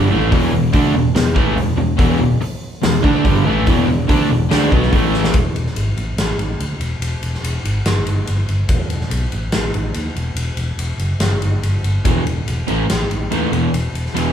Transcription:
Already playing: G2 D3 G3
0.11 A1 A2 E3 A3
0.32 E1 E2 B2 E3, kick, open hi-hat
0.52 E1 E2 B2
0.72 D2 D3 A3 D4, kick, open hi-hat
0.93 E1 E2 B2
1.14 E1 E2 B2, snare, open hi-hat
1.35 A1 A2 E3 A3, kick
1.56 E1 E2 B2, open hi-hat
1.76 E1 E2 B2
1.97 E1 E2 B2 E3, kick, open hi-hat
2.19 E1 E2 B2
2.41 muted overdriven electric guitar stroke, muted distorted electric guitar stroke, muted fingered electric bass stroke, open hi-hat
2.82 E1 E2 B2, snare, open hi-hat
3.02 D2 D3 A3 D4, kick
3.24 G1 G2 D3 G3, kick, open hi-hat
3.44 A1 A2 E3 A3
3.66 E1 E2 B2 E3, kick, open hi-hat
3.88 E1 E2 B2
4.08 D2 D3 A3 D4, kick, open hi-hat
4.28 E1 E2 B2
4.49 D2 D3 A3 D4, snare, open hi-hat
4.70 B1 B2 F#3 B3, kick
4.83 snare
4.92 A1 A2 E3 A3, kick, open hi-hat
5.14 snare
5.24 snare
5.34 E1, kick, ride
5.55 E1, ride
5.67 snare
5.76 G#1, ride
5.97 A1, ride
6.17 A1, snare, ride
6.38 A1, ride
6.59 D2, ride
6.80 E1, ride
7.00 E1, ride
7.22 E1, ride
7.34 snare
7.44 E1, ride
7.64 G#1, ride
7.86 G1, snare, ride
8.06 G1, ride
8.27 G1, ride
8.49 G1, ride
8.69 E1, kick, ride
8.90 E1, ride
9.01 snare
9.11 B1, ride
9.32 A1, ride
9.52 A1, snare, ride
9.74 A1, ride
9.94 D#2, ride
10.16 E1, ride
10.35 E1, ride
10.57 E1, ride
10.78 E1, ride
10.98 F#1, ride
11.20 G1, snare, ride
11.41 G1, ride
11.62 G1, ride
11.83 G1, ride
12.04 E1 E2 B2 E3, kick, ride
12.26 E1, ride
12.48 E1, ride
12.67 A1 A2 E3 A3, ride
12.89 A1, snare, ride
13.11 A1, ride
13.31 D#2 A2 E3 A3, ride
13.51 E1 E2 B2 E3, ride
13.73 E1, ride
13.93 E1, ride
14.06 snare
14.14 E1 E2 B2 E3, ride

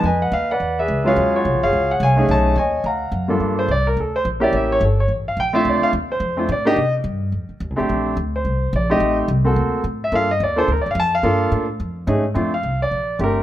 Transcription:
0.04 F2 B4 D#5 G#5
0.22 F#5
0.32 D#2 F5
0.51 B4 D5 F#5
0.60 E2
0.79 G#4 B4 E5
0.88 C#2
1.04 F#3 G#3 C#4 F4 G#4 F5
1.08 C#5
1.16 D#2
1.36 F4 F#4 C#5
1.45 C2
1.54 A#1
1.63 F#1 G#4 C#5 F5
1.73 C#2
1.91 F#5
2.00 C2 C#5 G#5
2.04 F5
2.16 A3 C#4 D#4 G#4
2.29 B1 A5
2.33 C#5 D#5
2.56 D#2 C#5 D#5 G#5
2.84 D2 F5 F#5 A#5
3.12 F#2
3.28 G2 A#3 D4 F4 A4
3.40 G2
3.59 C5
3.68 C2 D5
3.87 A#4
3.97 D2 A4
4.16 C5
4.25 A#1
4.40 A#3 C#4 E4 G4 D5
4.53 A1 E5
4.72 C#5
4.81 G1
4.85 A4
5.00 C#5
5.08 A1
5.28 F5
5.37 A#1 G5
5.53 A3 C4 D4 F4 E5
5.65 D2
5.69 D5
5.81 F5, muted upright bass stroke
5.93 D#2
6.12 C5
6.20 F2
6.37 A3 C4 D4 F4
6.49 A2 D5
6.65 A#3 D4 D#4 G4 D#5
6.76 C3
7.04 G2
7.32 F2
7.49 muted upright bass stroke
7.60 D#2
7.70 C2
7.76 A1 A3 C4 D4 G4
7.89 A#1
8.17 D2
8.36 C5
8.45 C2
8.73 A#1 D5
8.89 A3 C4 D#4 G4 D#5
9.00 A1
9.28 C2
9.44 A#3 C4 F#4 A4
9.56 D2
9.84 A2
10.04 E5
10.12 G2 A#3 D4 F4 A4 F5
10.31 D#5
10.40 D#2 D5
10.56 A#3 D4 F4 A4 C5
10.68 D2
10.72 A#4
10.77 A#1
10.81 D5
10.86 G1
10.91 F5
10.95 F2
11.00 A5
11.15 F5
11.23 G2 A#3 D4 F4 A4
11.52 A2
11.80 F2
12.07 G#2 A3 C#4 D#4 G#4
12.34 F2 A3 C4 D4 F4
12.54 F5
12.63 C2
12.82 D5
12.91 A#1
13.19 G1 A3 C4 D4 G4
13.24 A#4

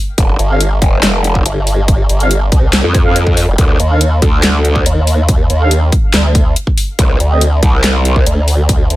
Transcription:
0.18 F1, kick, closed hi-hat
0.39 G1, closed hi-hat
0.50 C4 A4 F5
0.61 closed hi-hat
0.82 F1, kick, closed hi-hat
1.03 snare, clap, closed hi-hat
1.24 closed hi-hat
1.35 kick
1.46 G1, closed hi-hat
1.67 open hi-hat
1.88 kick, closed hi-hat
2.09 G1, closed hi-hat
2.20 C4 A4 F5, closed hi-hat
2.31 closed hi-hat
2.52 C2, kick, closed hi-hat
2.73 snare, clap, closed hi-hat
2.84 F2
2.95 kick, closed hi-hat
3.05 C4 A4 F5
3.16 closed hi-hat
3.27 kick
3.37 open hi-hat
3.48 F1
3.58 D2, kick, closed hi-hat
3.80 D#2, closed hi-hat
3.91 D4 A4 F5
4.01 closed hi-hat
4.22 D2, kick, closed hi-hat
4.43 snare, clap, closed hi-hat
4.65 closed hi-hat
4.76 kick
4.86 D#2, closed hi-hat
5.07 open hi-hat
5.29 kick, closed hi-hat
5.50 D#2, closed hi-hat
5.61 D4 A4 F5
5.71 closed hi-hat
5.92 kick, closed hi-hat
6.14 D2, snare, clap, closed hi-hat
6.35 kick, closed hi-hat
6.56 closed hi-hat
6.67 kick
6.78 open hi-hat
6.99 C2, kick, closed hi-hat
7.20 D2, closed hi-hat
7.31 C4 G4 D#5
7.41 closed hi-hat
7.63 C2, kick, closed hi-hat
7.84 snare, clap, closed hi-hat
8.05 closed hi-hat
8.16 kick
8.26 D2, closed hi-hat
8.48 open hi-hat
8.69 kick, closed hi-hat
8.90 D2, closed hi-hat

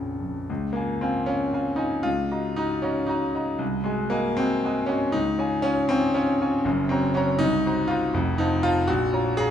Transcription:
Already playing: A#1 F2 C#3 F3 A#4
0.20 F2
0.50 C#2
0.73 A#3 F4 F5 G#5
1.01 C4 F4 F5 G#5
1.26 C#4 F4 F5 G#5
1.53 F4 F5 G#5
1.76 D#4 F4 F5 G#5
2.03 C#2 F4
2.31 F#4 D#5 A#5
2.56 D#4 F#4 D#5 A#5
2.82 C#4 F#4 D#5 A#5
3.07 D#4 F#4 D#5 A#5
3.35 F#4 D#5 A#5
3.59 C2
3.84 G#3 F#4 D#5 G#5
4.10 A#3 F#4 D#5 G#5
4.37 C4 F#4 D#5 G#5
4.65 F#4 D#5 G#5
4.86 C#4 F#4 D#5 G#5
5.12 C#2 D#4
5.38 F4 C#5 G#5
5.62 C#4 F4 C#5 G#5
5.89 C4 F4 C#5 G#5
6.14 C#4 F4 C#5 G#5
6.41 F4 C#5 G#5
6.64 F#1 F#2
6.89 C4 F#4 C#5 A#5
7.14 C#4 F#4 C#5 A#5
7.39 C2 D#4
7.66 F#4 C5 A#5
7.88 F4 F#4 C5 A#5
8.14 F1 F2
8.38 D#4 F4 C5 A5
8.63 F4 C5 A5
8.88 A#1 F#4
9.13 F4 C#5 A#5
9.37 F4 G#4 C#5 A#5

